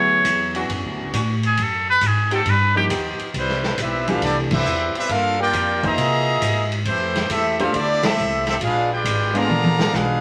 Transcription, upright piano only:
0.00 1.04 F#3 medium
0.00 1.04 B3 medium
0.00 1.04 E4 medium
0.00 1.05 G#4 medium
2.75 2.88 F3 medium
2.75 2.88 A#3 medium
2.75 2.88 D#4 medium
2.75 2.89 G4 medium
4.07 4.63 E3 medium
4.07 4.63 A3 medium
4.07 4.63 D4 medium
4.07 4.64 G4 medium
5.83 5.96 A#3 medium
5.83 5.96 D#4 medium
5.83 5.96 G#4 medium
5.83 5.97 C5 medium
7.59 7.72 A3 medium
7.59 7.72 D4 medium
7.59 7.72 G4 medium
7.59 7.73 C5 loud
9.33 9.47 G#3 medium
9.33 9.47 B3 medium
9.33 9.48 D4 medium
9.33 9.48 F4 medium

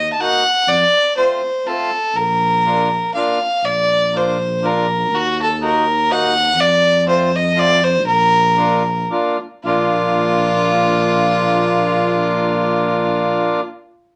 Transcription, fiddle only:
0.00 0.11 D#5 medium
0.13 0.22 A5 medium
0.20 0.70 F#5 loud
0.68 1.16 D5 loud
1.17 1.68 C5 medium
1.67 2.18 A4 medium
2.16 3.14 A#4 loud
3.14 3.67 F5 medium
3.65 4.18 D5 loud
4.16 4.67 C5 medium
4.66 5.16 A#4 medium
5.15 5.40 F#4 loud
5.42 5.61 A4 medium
5.65 6.13 A#4 medium
6.11 6.62 F#5 loud
6.61 7.08 D5 loud
7.09 7.37 C5 medium
7.36 7.60 D#5 medium
7.59 7.85 D5 loud
7.84 8.06 C5 loud
8.07 9.06 A#4 loud
9.64 13.59 F4 loud

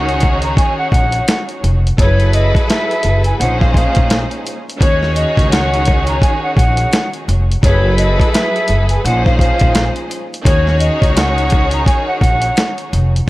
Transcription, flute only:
0.00 0.40 F#5 medium
0.44 0.56 A#5 medium
0.57 0.76 G#5 medium
0.78 0.90 F#5 medium
0.91 1.44 F#5 medium
2.00 2.31 C#5 loud
2.34 2.65 D#5 medium
2.70 3.22 E5 medium
3.25 3.38 G#5 medium
3.39 3.58 F#5 medium
3.60 3.73 F5 medium
3.74 4.28 F5 medium
4.81 5.13 C#5 loud
5.16 5.48 D#5 medium
5.51 6.04 F#5 medium
6.09 6.21 A#5 medium
6.21 6.41 G#5 medium
6.43 6.56 F#5 medium
6.57 7.10 F#5 medium
7.64 7.95 C#5 loud
7.98 8.30 D#5 medium
8.32 8.86 E5 medium
8.90 9.03 G#5 medium
9.04 9.23 F#5 medium
9.26 9.38 F5 medium
9.39 9.92 F5 medium
10.46 10.77 C#5 loud
10.80 11.12 D#5 medium
11.17 11.69 F#5 medium
11.73 11.86 A#5 medium
11.87 12.06 G#5 medium
12.07 12.19 F#5 medium
12.20 12.74 F#5 medium

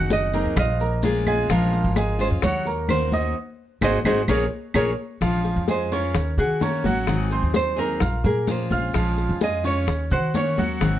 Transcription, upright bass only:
0.00 0.43 F#1 medium
0.45 0.55 F2 medium
0.56 1.45 A#1 loud
1.50 1.83 A#1 loud
1.84 2.29 G#1 loud
2.31 2.42 F2 medium
2.43 3.32 D#2 loud
3.82 3.99 G#1 loud
4.05 4.22 G#1 medium
4.28 4.46 A#1 medium
4.74 4.92 A#1 loud
5.21 5.54 A#1 medium
5.56 6.12 F2 medium
6.15 6.39 D#2 loud
6.38 6.82 D#3 loud
6.84 7.07 A1 medium
7.07 7.41 G#1 medium
7.42 7.98 D#2 medium
8.01 8.25 A#1 loud
8.24 8.69 A#2 loud
8.71 8.93 A#1 medium
8.94 9.28 A#1 medium
9.29 9.85 F2 loud
9.88 10.13 D#2 medium
10.11 10.56 D#3 loud
10.58 10.80 D#2 medium
10.81 10.99 G#1 medium

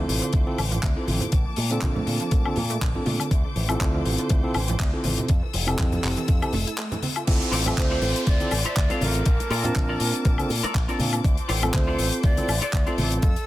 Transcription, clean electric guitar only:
7.52 7.66 F4 loud
7.52 7.66 A4 loud
7.52 7.66 C5 loud
7.52 7.66 D5 loud
7.91 8.09 F4 medium
7.91 8.09 A4 medium
7.91 8.09 C5 medium
7.91 8.09 D5 medium
8.27 muted clean electric guitar stroke soft
8.65 8.76 F4 loud
8.65 8.76 A4 loud
8.65 8.76 C5 loud
8.65 8.77 E5 loud
8.90 9.20 F4 medium
8.90 9.21 A4 medium
8.90 9.21 C5 medium
8.90 9.21 F5 medium
9.51 9.64 F4 loud
9.51 9.65 A4 medium
9.51 9.65 A#4 loud
9.51 9.65 D5 loud
9.89 10.07 F4 medium
9.89 10.07 A4 medium
9.89 10.07 A#4 medium
9.89 10.07 D5 loud
10.25 muted clean electric guitar stroke soft
10.63 10.75 F4 loud
10.63 10.75 A4 medium
10.63 10.75 A#4 loud
10.63 10.75 D5 loud
10.88 11.19 F4 medium
10.88 11.19 A4 medium
10.88 11.19 A#4 medium
10.88 11.19 D5 loud
11.48 11.63 F4 loud
11.48 11.63 A4 medium
11.48 11.63 C5 loud
11.48 11.63 D5 loud
11.74 muted clean electric guitar stroke soft
11.87 12.05 F4 medium
11.87 12.06 A4 medium
11.87 12.06 C5 medium
11.87 12.06 D5 medium
12.23 muted clean electric guitar stroke soft
12.62 12.73 F4 loud
12.62 12.73 A4 loud
12.62 12.73 C5 medium
12.62 12.73 D5 loud
12.86 13.17 F4 medium
12.86 13.17 A4 medium
12.86 13.17 C5 medium
12.86 13.17 D5 medium

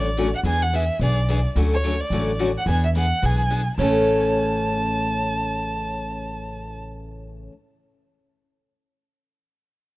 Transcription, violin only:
0.00 0.30 D5 medium
0.35 0.40 F#5 medium
0.48 0.64 G#5 loud
0.62 0.77 F#5 medium
0.75 1.02 E5 medium
1.04 1.43 D5 medium
1.73 2.01 C#5 medium
2.00 2.39 D5 medium
2.57 2.68 F#5 medium
2.69 2.83 G#5 medium
2.85 2.90 E5 medium
2.96 3.27 F#5 medium
3.25 3.68 G#5 medium
3.78 6.77 A5 medium

